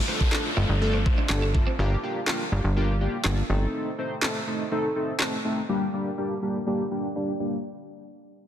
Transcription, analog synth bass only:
0.57 G1
0.69 G1
1.30 G1
1.79 G1
2.52 G1
2.64 G1
3.25 G1
3.50 G1

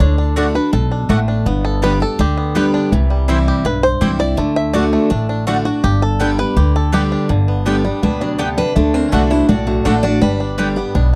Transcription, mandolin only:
0.36 A3 F#4 D5 F#5
1.09 A3 F#4 D5 F#5
1.82 B3 G4 D5 G5
2.55 B3 G4 D5 G5
3.28 C4 E4 C5 G5
4.01 C4 E4 C5 G5
4.74 A3 F#4 D5 F#5
5.47 A3 F#4 D5 F#5
6.20 B3 G4 D5 G5
6.92 B3 G4 D5 G5
7.66 B3 G4 D5 G5
8.38 B3 G4 D5 G5
9.12 A3 F#4 D5 F#5
9.85 A3 F#4 D5 F#5
10.58 B3 G4 D5 G5

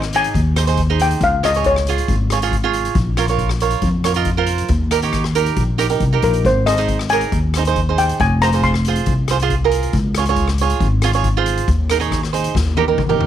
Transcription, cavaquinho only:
0.14 D#4 G#4 D#5
0.56 D#4 G#4 C5
0.67 D#4 G#4 C5
0.90 D#4 G#4 C5
1.43 F4 G#4 C#5
1.56 F4 G#4 C#5
1.89 F4 G#4 C#5
2.32 F4 G#4 C#5
2.43 F4 G#4 C#5
2.64 F4 G#4 C#5
3.18 F4 A#4 C#5
3.29 F4 A#4 C#5
3.62 F4 A#4 C#5
4.05 F4 A#4 C#5
4.16 F4 A#4 D#5
4.37 F4 A#4 C5
4.91 D#4 G4 A#4
5.03 D#4 G4 C#5
5.35 D#4 G4 A#4
5.78 D#4 G4 A#4
5.90 D#4 G4 A#4
6.13 D#4 G4 A#4
6.67 D#4 G#4 C5
6.78 D#4 G#4 C5
7.12 D#4 G#4 A#4
7.57 D#4 G#4 C5
7.67 D#4 G#4 C5
7.89 D#4 G#4 C5
8.43 F4 G#4 C5
8.54 F4 G#4 C5
8.88 F4 G#4 C5
9.31 F4 G#4 C5
9.42 F4 G#4 C5
9.64 F4 G#4 A#4
10.18 F4 G#4 C#5
10.29 F4 G#4 C#5
10.61 F4 G#4 C#5
11.03 F4 G#4 C#5
11.15 F4 G#4 C#5
11.37 F4 G#4 C5
11.91 D#4 G#4 A#4
12.00 D#4 G#4 C#5
12.33 D#4 G#4 C5
12.77 D#4 G4 A#4
12.88 D#4 G4 A#4
13.09 D#4 G4 A#4

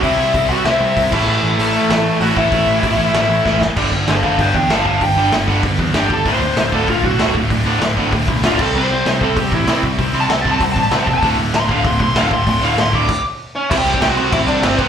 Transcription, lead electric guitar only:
0.01 E4 E5
0.16 E4 E5
0.49 F#4 F#5
0.65 E4 E5
1.60 A3 A4
1.91 A3 A4
2.21 F#4 F#5
2.36 E4 E5
4.10 A4 F5
4.25 A4 F5
4.40 B4 G5
4.55 B4 G5
4.71 F5 A5
4.86 F5 A5
5.03 G5
5.96 G4
6.13 A4
6.28 C5
6.74 A4
6.89 F4
7.05 F#4
8.45 F4
8.61 A4
8.75 C5
9.22 A4
9.37 G4
9.54 E4
10.20 A5
10.30 F#5
10.41 A5
10.51 A5
10.63 F#5
10.73 A5
10.83 A5
10.93 F#5
11.03 A5
11.14 A5
11.56 C6
11.70 F5
11.86 C6
12.02 C6
12.18 F5
12.33 C6
12.50 C6
12.64 F5
12.80 C6
12.95 D6
13.55 C#4 C#5
13.69 E4 E5
13.78 G4 G5
14.01 G4 G5
14.09 F#4 F#5
14.32 E4 E5
14.47 D4 D5
14.63 C4 C5
14.79 B3 B4

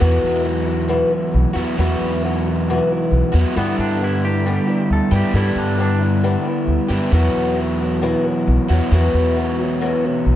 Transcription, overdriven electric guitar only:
0.00 E2 B2 F#3 B3 E4 F#4
1.53 B2 F#3 B3 E4 F#4
1.58 E2
1.76 E2 B2 F#3 B3 E4 F#4
3.32 E2 B2 F#3 B3 E4 F#4
3.54 G2 D3 G3 B3 D4
3.59 G4
5.11 G2 D3 G3 B3 D4 G4
5.33 G2 D3 G3 B3 D4
5.37 G4
6.88 D3 G3 B3 D4 G4
6.92 G2
7.11 E2 B2 F#3 B3 E4 F#4
8.68 E2 B2 F#3 B3 E4 F#4
8.91 E2 B2 F#3 B3 E4 F#4

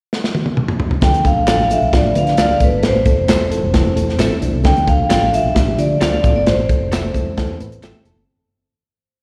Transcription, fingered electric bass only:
1.02 D2
1.35 B1
1.46 A1
1.81 B1
1.93 A1
2.15 D3
2.38 D2
2.60 A1
2.72 G1
2.83 A1
3.17 F1
3.28 E1
3.62 F1
3.96 E1
4.19 A1
4.41 B1
4.53 C2
4.65 D2
4.99 B1
5.10 A1
5.44 B1
5.56 A1
5.78 D3
6.01 D2
6.24 A1
6.35 G1
6.46 A1
6.80 F1
7.14 E1
7.37 E2
7.60 A2
7.82 A1
8.05 F1
8.16 G1

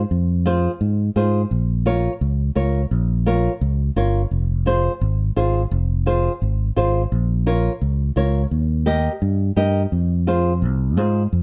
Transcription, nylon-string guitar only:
0.46 F4 G#4 C5
1.16 F4 G#4 C5
1.86 F4 A#4 C#5
2.55 F4 A#4 C#5
3.26 F4 A#4 C#5
3.96 F4 A#4 C#5
4.66 F4 G#4 C5
5.36 F4 G#4 C5
6.06 F4 G#4 C5
6.76 F4 G#4 C5
7.46 F4 A#4 C#5
8.16 F4 A#4 C#5
8.86 G4 A#4 D#5
9.56 G4 A#4 D#5
10.27 F4 G#4 C5
10.97 F4 G#4 C5

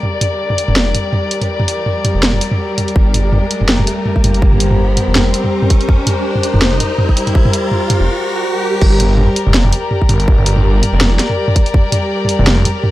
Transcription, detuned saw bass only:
0.69 F1
2.15 F1
2.96 G1
3.61 F1
4.24 G1
5.07 F1
6.54 F1
8.00 F1
8.82 G1
9.47 F1
10.09 G1
10.93 F1
12.39 F1

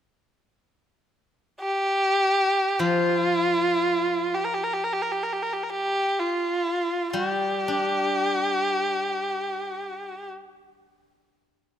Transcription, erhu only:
1.61 G4
2.80 F4
4.34 G4
4.44 A#4
4.54 G4
4.63 A#4
4.73 G4
4.84 A#4
4.93 G4
5.02 A#4
5.12 G4
5.23 A#4
5.33 G4
5.43 A#4
5.53 G4
5.63 A#4
5.69 G4
6.19 F4
7.11 F#4
7.30 G4

